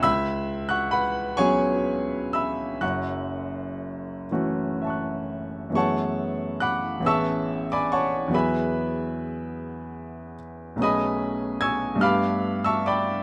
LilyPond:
<<
  \new Staff \with { instrumentName = "Grand piano" } { \time 6/8 \key fis \minor \tempo 4. = 46 <e'' b'' e'''>8. <fis'' cis''' fis'''>16 <b' fis'' b''>8 <cis'' gis'' cis'''>4 <e'' b'' e'''>8 | <fis'' cis''' fis'''>4. r8 <e'' a'' cis''' fis'''>4 | <cis'' fis'' a'' cis'''>4 <fis'' b'' d''' fis'''>8 <e'' a'' cis''' e'''>8. <d'' gis'' b'' d'''>16 <cis'' fis'' a'' cis'''>8 | <b' e'' gis'' b''>2~ <b' e'' gis'' b''>8 r8 |
<dis'' gis'' b'' dis'''>4 <gis'' cis''' e''' gis'''>8 <f'' b'' d''' f'''>8. <e'' a'' cis''' e'''>16 <d'' g'' b'' d'''>8 | }
  \new Staff \with { instrumentName = "Grand piano" } { \time 6/8 \key fis \minor cis,4. <fis b cis' gis'>4. | <fis,, fis,>4. <e a cis' fis'>4. | <fis, e a b gis'>4. <a,, e b cis' gis'>4. | <e, fis b e' gis'>2. |
<b,, a b cis' gis'>4. <g, a b d' g'>4. | }
>>